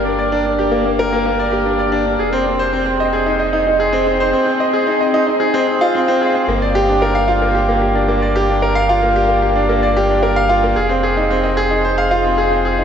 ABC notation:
X:1
M:4/4
L:1/16
Q:1/4=112
K:Gphr
V:1 name="Grand piano"
D d D D G B, B, B B, B, d G D d D D | A C C c C C e A E e E E A C C c | C C e A E e E E A C C F C C A C | B, d G D B f F B, G B, G D B, d G D |
B f F B, G B, G D B, d G D B f F B, | A C A E C e A E c f F C A C A E |]
V:2 name="Sub bass" clef=bass
G,,,16 | F,,,16 | z16 | G,,,16- |
G,,,16 | F,,,16 |]